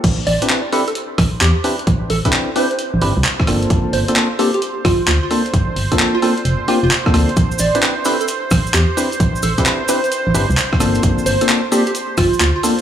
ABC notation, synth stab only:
X:1
M:4/4
L:1/16
Q:"Swing 16ths" 1/4=131
K:Aphr
V:1 name="Synth stab"
z3 [CDEG=B] [CDEGB] z [CDEGB] z6 z [CDEGB] z | z3 [CDEG=B] [CDEGB] z [CDEGB] z3 [CDEGB] z3 [_B,CDFA]2- | [B,CDFA]3 [B,CDFA] [B,CDFA] z [B,CDFA] z6 z [B,CDFA] z | z3 [B,CDFA] [B,CDFA] z [B,CDFA] z3 [B,CDFG] z2 [B,CDFA] [B,CDFA] z |
z3 [CDEG=B] [CDEGB] z [CDEGB] z6 z [CDEGB] z | z3 [CDEG=B] [CDEGB] z [CDEGB] z3 [CDEGB] z3 [_B,CDFA]2- | [B,CDFA]3 [B,CDFA] [B,CDFA] z [B,CDFA] z6 z [B,CDFA] z |]